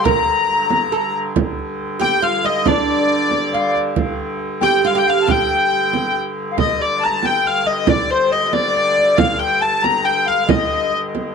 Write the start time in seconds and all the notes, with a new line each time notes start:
Already playing: G2 D3
0.04 A#4 A#5, frame drum
0.28 frame drum
0.71 frame drum
0.92 A4
1.36 G2 D3, frame drum
1.59 frame drum
2.00 G4 G5, frame drum
2.22 F4 F5
2.44 D#4 D#5, frame drum
2.66 D4 D5, frame drum
2.89 frame drum
3.31 frame drum
3.53 F4 F5, frame drum
3.76 frame drum
3.96 frame drum
4.19 frame drum
4.61 G4 G5, frame drum
4.84 F4 F5, frame drum
4.95 G4 G5
5.06 F5, frame drum
5.21 A5
5.27 G4 G5, frame drum
5.50 frame drum
5.72 frame drum
5.93 frame drum
6.51 F5
6.57 G2 D3 D#5, frame drum
6.79 D5, frame drum
6.99 A5
7.03 A5 A#5
7.12 A5
7.23 G5, frame drum
7.45 F5, frame drum
7.65 D#5, frame drum
7.87 D5, frame drum
8.10 C5, frame drum
8.32 D#5
8.46 D#5
8.53 D5, frame drum
8.75 frame drum
8.98 frame drum
9.17 F5, frame drum
9.39 G5, frame drum
9.61 A5
9.82 A#5, frame drum
10.04 G5, frame drum
10.26 F5, frame drum
10.47 D#5, frame drum
10.93 frame drum
11.15 frame drum